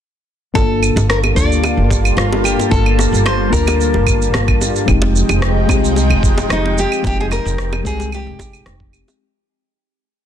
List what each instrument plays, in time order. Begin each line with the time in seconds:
0.54 upright bass G1, analog synth pad G3 A#3 F4 A5, fm electric piano A#3 D4 F4, nylon-string guitar A4, kick, high bongo, shaker
0.58 fm electric piano A4
0.83 claves, shaker
0.96 upright bass G1, high bongo, shaker
1.10 nylon-string guitar A#4, cross-stick, shaker
1.23 high bongo, claves
1.35 upright bass D2, fm electric piano A#3 D4 F4 A4, nylon-string guitar D5, kick, shaker
1.52 shaker
1.64 high bongo, claves, shaker
1.77 upright bass G1
1.91 kick, high bongo, shaker
2.05 claves, shaker
2.17 upright bass G1, nylon-string guitar F4, cross-stick, shaker
2.33 high bongo
2.44 nylon-string guitar G4, claves, shaker
2.60 high bongo, shaker
2.70 upright bass G1, fm electric piano A#3 D4 F4 A4, nylon-string guitar A4, kick, shaker
2.86 claves
2.99 cross-stick, high bongo, shaker
3.13 upright bass G1, shaker
3.26 nylon-string guitar C5, cross-stick, high bongo, claves, shaker
3.50 upright bass D2, fm electric piano A#3 D4 F4 A#4, nylon-string guitar A#4, kick, shaker
3.67 high bongo, claves, shaker
3.81 shaker
3.94 upright bass G1, high bongo
4.07 kick, claves, shaker
4.22 shaker
4.34 upright bass G1, cross-stick, high bongo, shaker
4.48 kick, claves
4.61 high bongo, shaker
4.76 shaker
4.86 upright bass F1, analog synth pad F3 G#3 D#4 G5, fm electric piano G#3 C4 D#4 G4, kick, claves, shaker
5.02 high bongo
5.16 shaker
5.29 upright bass F1, high bongo, claves, shaker
5.42 cross-stick, shaker
5.66 upright bass C2, fm electric piano G#3 C4 D#4, kick, high bongo, claves, shaker
5.71 fm electric piano G4
5.84 shaker
5.96 high bongo, shaker
6.10 upright bass F1, claves
6.23 kick, shaker
6.38 high bongo, shaker
6.49 upright bass F1, nylon-string guitar D#4, cross-stick, claves, shaker
6.66 high bongo
6.78 nylon-string guitar G4, shaker
6.92 claves, shaker
7.02 upright bass F1, fm electric piano G#3 C4 D#4 G4, kick, high bongo, shaker
7.07 nylon-string guitar G4
7.20 nylon-string guitar G#4
7.31 nylon-string guitar A#4, cross-stick, high bongo, claves, shaker
7.45 upright bass F1, shaker
7.58 cross-stick, shaker
7.73 high bongo, claves
7.83 upright bass C2, fm electric piano G#3 C4 D#4, nylon-string guitar G#4, kick, shaker
7.87 fm electric piano G4
8.00 high bongo, shaker
8.12 nylon-string guitar G4, claves, shaker
8.27 upright bass F1
8.39 kick, high bongo, shaker
8.53 claves, shaker
8.66 upright bass F1, cross-stick, high bongo, shaker
8.80 kick
8.93 claves, shaker
9.08 high bongo, shaker